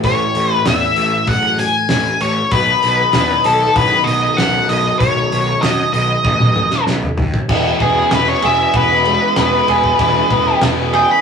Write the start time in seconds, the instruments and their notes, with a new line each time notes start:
Already playing: overdriven electric guitar A2 E3 A3 C#4 E4 A4
0.03 picked electric bass A1, lead electric guitar C#5, kick, open hi-hat
0.35 picked electric bass A1, open hi-hat
0.54 lead electric guitar B4
0.65 picked electric bass E2, lead electric guitar E5, snare, open hi-hat
0.96 picked electric bass A1, open hi-hat
1.27 picked electric bass F#1, lead electric guitar F#5, kick, open hi-hat
1.59 lead electric guitar G#5, open hi-hat
1.89 picked electric bass A1, snare, open hi-hat
2.21 picked electric bass A1, lead electric guitar C#5, open hi-hat
2.51 picked electric bass B1, overdriven electric guitar B2 D#3 F#3 B3 D#4 B4, lead electric guitar B4, kick, open hi-hat
2.83 picked electric bass B1, open hi-hat
3.13 picked electric bass E2, snare, open hi-hat
3.44 picked electric bass B1, lead electric guitar A4, open hi-hat
3.76 picked electric bass F#1, lead electric guitar B4, kick, open hi-hat
4.04 picked electric bass B1, lead electric guitar D#5, open hi-hat
4.37 picked electric bass B1, lead electric guitar F#5, snare, open hi-hat
4.69 picked electric bass B1, lead electric guitar D#5, open hi-hat
4.99 picked electric bass B1, lead electric guitar C#5, kick, open hi-hat
5.32 picked electric bass B1, open hi-hat
5.62 picked electric bass F#2, lead electric guitar D#5, snare, open hi-hat
5.93 picked electric bass B1, lead electric guitar D#5, open hi-hat
6.24 picked electric bass A1, kick
6.40 high tom
6.56 mid tom
6.71 snare
6.87 picked electric bass B1, snare
7.03 mid tom
7.17 picked electric bass D#2, floor tom
7.34 kick
7.49 picked electric bass E1, overdriven electric guitar E3 G#3 B3 E4, kick, crash
7.80 picked electric bass E1, clean electric guitar B3, lead electric guitar G#4, kick, ride
7.96 overdriven electric guitar G#3 B3 E4
8.11 picked electric bass E1, overdriven electric guitar E3 G#3 B3 E4, lead electric guitar B4, snare, ride
8.28 lead electric guitar C#5
8.42 picked electric bass E1, overdriven electric guitar E3 G#3 B3 E4, clean electric guitar G#4, lead electric guitar E5, ride
8.59 muted overdriven electric guitar stroke
8.74 picked electric bass E1, clean electric guitar B3, lead electric guitar B4, kick, ride
8.90 overdriven electric guitar G#3 B3 E4
9.05 overdriven electric guitar E3 G#3 B3 E4, ride
9.23 muted overdriven electric guitar stroke
9.36 picked electric bass E1, overdriven electric guitar E3 G#3 B3 E4, snare, ride
9.54 overdriven electric guitar G#3 B3 E4
9.68 picked electric bass E1, overdriven electric guitar E3 G#3 B3 E4, clean electric guitar G#4, ride
9.84 kick
9.99 picked electric bass E1, overdriven electric guitar E3 G#3 B3, kick, ride
10.03 overdriven electric guitar E4
10.30 picked electric bass E1, clean electric guitar B3, kick, ride
10.47 overdriven electric guitar G#3 B3 E4
10.61 picked electric bass E1, overdriven electric guitar E3 G#3 B3, snare, ride
10.66 overdriven electric guitar E4
10.93 overdriven electric guitar E3 G#3 B3 E4, clean electric guitar G#4, lead electric guitar G5, ride
11.10 lead electric guitar B5, muted overdriven electric guitar stroke